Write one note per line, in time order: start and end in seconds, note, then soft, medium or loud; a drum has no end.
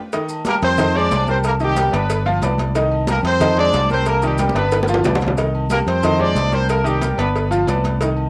0.13 0.40 D#3 medium
0.13 0.41 D#4 medium
0.13 0.41 D#5 medium
0.13 cowbell loud
0.13 high conga soft
0.13 maracas medium
0.29 high conga soft
0.29 low agogo medium
0.29 maracas medium
0.45 0.73 G3 medium
0.45 0.55 A#3 medium
0.45 0.73 G4 medium
0.45 0.73 A#4 medium
0.45 0.55 A#4 loud
0.45 cowbell medium
0.45 high conga loud
0.45 low timbale medium
0.45 low agogo loud
0.45 maracas medium
0.62 1.08 F2 loud
0.62 0.93 C4 medium
0.62 0.94 C5 loud
0.62 cowbell medium
0.62 maracas soft
0.78 0.92 D#3 medium
0.78 0.92 D#4 medium
0.78 0.92 D#5 loud
0.78 cowbell loud
0.78 high conga soft
0.78 low conga loud
0.78 low agogo loud
0.78 maracas medium
0.95 1.22 G#3 medium
0.95 1.28 D4 loud
0.95 1.22 G#4 medium
0.95 1.22 C5 medium
0.95 1.29 D5 loud
0.95 high conga soft
1.11 1.88 C2 loud
1.11 cowbell medium
1.11 high conga medium
1.11 low timbale loud
1.11 low agogo loud
1.11 maracas medium
1.27 1.55 G3 medium
1.27 1.38 C4 medium
1.27 1.55 G4 medium
1.27 1.55 A#4 medium
1.27 1.37 C5 loud
1.27 high conga medium
1.27 low agogo medium
1.27 maracas soft
1.44 1.54 A#3 medium
1.44 1.54 A#4 loud
1.44 cowbell loud
1.44 high conga soft
1.44 low agogo loud
1.44 maracas medium
1.60 1.74 D#3 loud
1.60 1.92 G3 medium
1.60 1.74 D#4 medium
1.60 1.92 G4 loud
1.60 1.74 D#5 medium
1.60 high conga soft
1.60 maracas medium
1.76 1.91 G3 medium
1.76 1.91 G4 medium
1.76 1.91 A#4 medium
1.76 cowbell medium
1.76 high conga loud
1.76 low timbale medium
1.76 low agogo medium
1.76 maracas medium
1.92 2.39 G1 loud
1.92 2.20 B3 medium
1.92 2.27 B3 medium
1.92 2.20 B4 medium
1.92 2.27 B4 medium
1.92 2.20 D5 medium
1.92 cowbell medium
1.92 high conga soft
1.92 low agogo loud
1.92 maracas soft
2.10 cowbell loud
2.10 high conga soft
2.10 maracas medium
2.26 2.40 F3 loud
2.26 2.40 F4 loud
2.26 2.40 F5 loud
2.26 low agogo medium
2.42 3.19 C2 loud
2.42 2.70 B3 medium
2.42 2.70 B4 medium
2.42 2.70 D5 medium
2.42 cowbell medium
2.42 high conga medium
2.42 low timbale medium
2.42 low agogo loud
2.42 maracas medium
2.58 cowbell medium
2.58 high conga medium
2.58 maracas soft
2.75 3.02 D#3 medium
2.75 3.03 D#4 medium
2.75 3.03 D#5 medium
2.75 cowbell loud
2.75 high conga soft
2.75 maracas medium
2.91 high conga soft
2.91 low agogo medium
3.07 3.35 G3 medium
3.07 3.17 A#3 medium
3.07 3.36 G4 medium
3.07 3.36 A#4 medium
3.07 3.17 A#4 loud
3.07 cowbell medium
3.07 high conga loud
3.07 low timbale medium
3.07 low agogo loud
3.07 maracas medium
3.23 3.69 F2 loud
3.23 3.56 C4 medium
3.23 3.56 C5 loud
3.23 cowbell medium
3.23 maracas soft
3.40 3.55 D#3 medium
3.40 3.54 D#4 medium
3.40 3.55 D#5 loud
3.40 cowbell loud
3.40 high conga soft
3.40 low conga medium
3.40 low agogo loud
3.40 maracas medium
3.57 3.84 G#3 medium
3.57 3.88 D4 medium
3.57 3.84 G#4 medium
3.57 3.85 C5 medium
3.57 3.88 D5 loud
3.57 high conga soft
3.73 4.50 C2 loud
3.73 cowbell medium
3.73 high conga medium
3.73 low timbale medium
3.73 low agogo loud
3.73 maracas medium
3.90 4.17 G3 medium
3.90 4.07 C4 medium
3.90 4.17 G4 medium
3.90 4.17 A#4 medium
3.90 4.06 C5 loud
3.90 high conga loud
3.90 low agogo loud
3.90 maracas soft
4.06 4.22 A#3 medium
4.06 4.22 A#4 loud
4.06 cowbell medium
4.06 low agogo loud
4.06 maracas medium
4.22 4.36 D#3 loud
4.22 4.55 G3 medium
4.22 4.37 D#4 medium
4.22 4.54 G4 medium
4.22 4.37 D#5 medium
4.22 high conga soft
4.22 maracas medium
4.38 4.52 G3 medium
4.38 4.52 G4 medium
4.38 4.53 A#4 medium
4.38 cowbell medium
4.38 high conga medium
4.38 high timbale loud
4.38 low agogo medium
4.38 maracas medium
4.49 high conga medium
4.54 5.01 G1 loud
4.54 4.82 B3 medium
4.54 4.87 B3 medium
4.54 4.82 B4 medium
4.54 4.87 B4 medium
4.54 4.82 D5 medium
4.54 cowbell medium
4.54 high timbale medium
4.54 low agogo loud
4.54 maracas soft
4.71 cowbell loud
4.71 high bongo medium
4.71 maracas medium
4.83 high bongo loud
4.83 high conga loud
4.88 5.02 F3 loud
4.88 5.02 F4 loud
4.88 5.02 F5 medium
4.88 low agogo medium
4.88 maracas medium
4.94 high bongo loud
4.94 low conga medium
5.04 5.81 C2 loud
5.04 5.32 B3 medium
5.04 5.32 B4 medium
5.04 5.32 D5 medium
5.04 cowbell medium
5.04 low bongo loud
5.04 low conga loud
5.04 low timbale loud
5.04 low agogo loud
5.04 maracas medium
5.15 low bongo medium
5.15 low conga loud
5.21 cowbell medium
5.21 low timbale medium
5.21 maracas soft
5.26 low bongo loud
5.26 low conga medium
5.37 5.64 D#3 medium
5.37 5.65 D#4 medium
5.37 5.65 D#5 medium
5.37 cowbell loud
5.37 high conga soft
5.37 maracas medium
5.54 high conga soft
5.54 low agogo medium
5.70 5.97 G3 medium
5.70 5.79 A#3 medium
5.70 5.97 G4 medium
5.70 5.78 A#4 loud
5.70 5.98 A#4 medium
5.70 cowbell medium
5.70 high conga medium
5.70 low timbale medium
5.70 low agogo loud
5.70 maracas medium
5.86 6.32 F2 loud
5.86 6.18 C4 medium
5.86 6.17 C5 loud
5.86 cowbell medium
5.86 maracas soft
6.03 6.17 D#3 loud
6.03 6.17 D#4 medium
6.03 6.17 D#5 medium
6.03 cowbell loud
6.03 high conga soft
6.03 low conga medium
6.03 low agogo loud
6.03 maracas medium
6.19 6.46 G#3 medium
6.19 6.53 D4 medium
6.19 6.47 G#4 medium
6.19 6.47 C5 medium
6.19 6.53 D5 loud
6.19 high conga soft
6.19 low conga medium
6.35 7.12 C2 loud
6.35 cowbell medium
6.35 high conga medium
6.35 low timbale medium
6.35 low agogo loud
6.35 maracas medium
6.52 6.79 G3 medium
6.52 6.70 C4 medium
6.52 6.79 G4 medium
6.52 6.80 A#4 medium
6.52 6.69 C5 loud
6.52 high conga medium
6.52 low agogo loud
6.52 maracas soft
6.69 6.86 A#3 medium
6.69 6.85 A#4 loud
6.69 cowbell loud
6.69 high conga soft
6.69 low agogo loud
6.69 maracas medium
6.84 6.98 D#3 loud
6.84 7.17 G3 medium
6.84 6.98 D#4 medium
6.84 7.15 G4 medium
6.84 6.99 D#5 medium
6.84 high conga soft
6.84 maracas medium
7.02 7.15 G3 medium
7.02 7.15 G4 medium
7.02 7.16 A#4 medium
7.02 cowbell medium
7.02 high conga loud
7.02 low timbale medium
7.02 low agogo medium
7.02 maracas medium
7.18 7.64 G1 loud
7.18 7.45 B3 medium
7.18 7.49 B3 medium
7.18 7.48 B4 loud
7.18 7.45 B4 medium
7.18 7.45 D5 medium
7.18 cowbell medium
7.18 high conga soft
7.18 low agogo loud
7.18 maracas soft
7.35 cowbell loud
7.35 high conga soft
7.35 maracas medium
7.51 7.64 F3 loud
7.51 7.64 F4 medium
7.51 7.65 F5 loud
7.51 high conga soft
7.51 low agogo loud
7.51 maracas medium
7.67 8.29 C2 loud
7.67 7.95 B3 medium
7.67 7.95 B4 medium
7.67 7.95 D5 medium
7.67 cowbell medium
7.67 high conga loud
7.67 low timbale loud
7.67 low agogo loud
7.67 maracas medium
7.84 cowbell medium
7.84 high conga medium
7.84 maracas soft
8.01 8.28 D#3 medium
8.01 8.28 D#4 medium
8.01 8.28 D#5 medium
8.01 cowbell loud
8.01 high conga soft
8.01 maracas medium
8.17 high conga soft
8.17 low agogo medium